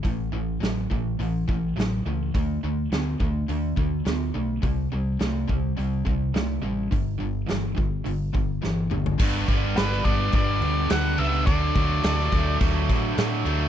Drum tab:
CC |----------------|----------------|----------------|----------------|
HH |o---o---o---o---|o---o---o---o---|o---o---o---o---|o---o---o-------|
SD |----o-------o---|----o-------o---|----o-------o---|----o-------o---|
T2 |----------------|----------------|----------------|--------------o-|
FT |----------------|----------------|----------------|---------------o|
BD |o-----o---o-----|o-----o---o-----|o-----o---o-----|o-----o---o-----|

CC |x-x-x-x-x-x-x-x-|x-x-x-x-x-x-x-x-|
HH |----------------|----------------|
SD |----oo------o---|----oo------o---|
T2 |----------------|----------------|
FT |----------------|----------------|
BD |o-o---o-o-------|o-o---o-o-o-----|